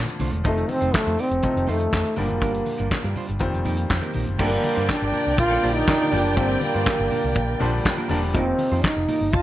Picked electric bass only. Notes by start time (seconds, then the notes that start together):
0.20 C2
0.33 E1
0.45 F1
0.82 F1
0.94 muted picked electric bass stroke
1.07 F2
1.31 F1
1.56 F1
1.68 F2
1.93 F2
2.18 G1
2.30 F#1
2.42 G1
2.80 G1
2.91 muted picked electric bass stroke
3.04 G2
3.29 G1
3.41 F1
3.54 F1
3.66 F2
3.90 F2
4.15 A#1
4.28 F#1
4.39 G1
4.77 G2
5.02 G1
5.27 C2
5.38 A#1
5.64 A#1
6.13 F#1
6.37 G1
6.75 G2
6.99 G1
7.24 C2
7.36 A#1
7.61 A#1
8.10 E1
8.35 F1
8.72 F2
8.96 F1
9.21 G1
9.34 F1